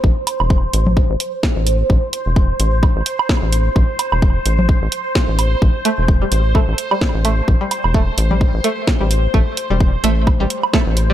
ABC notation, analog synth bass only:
X:1
M:4/4
L:1/16
Q:"Swing 16ths" 1/4=129
K:Am
V:1 name="Analog synth bass" clef=bass
A,,, z2 E,,,2 z A,,,2 z A,,, z3 A,,,2 z | A,,, z2 E,,,2 z A,,,2 z A,,, z3 A,,,2 z | A,,, z2 E,,,2 z A,,,2 z A,,, z3 A,,,2 z | A,,, z2 E,,,2 z A,,,2 z A,,, z3 A,,,2 z |
A,,, z2 E,,,2 z A,,,2 z A,,, z3 A,,,2 z | A,,, z2 E,,,2 z A,,,2 z A,,, z3 A,,,2 z |]